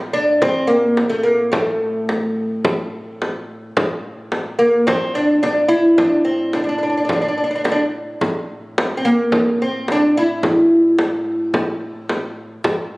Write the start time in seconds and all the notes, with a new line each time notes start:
Already playing: A2
0.13 D4
0.42 C4, frame drum
0.67 A#3
0.97 frame drum
1.10 A3
1.23 A#3
1.52 A3, frame drum
2.09 frame drum
2.65 frame drum
3.22 frame drum
3.77 A2, frame drum
4.32 frame drum
4.59 A#3
4.87 C4, frame drum
5.15 D4
5.43 D4, frame drum
5.68 E4
5.98 D4, frame drum
6.25 C4
6.53 D4, frame drum
6.64 D4
6.69 D4
6.78 D4
6.83 D4
6.90 D4
6.97 D4
7.05 D4
7.09 D4, frame drum
7.22 D4
7.28 D4
7.38 D4
7.44 D4
7.51 D4
7.56 D4
7.64 D4, frame drum
7.72 D4
8.21 A2, frame drum
8.78 frame drum
8.97 C4
9.05 A#3
9.32 frame drum
9.62 C4
9.88 D4, frame drum
10.17 E4
10.43 frame drum
10.99 frame drum
11.54 frame drum
12.09 frame drum
12.64 A2, frame drum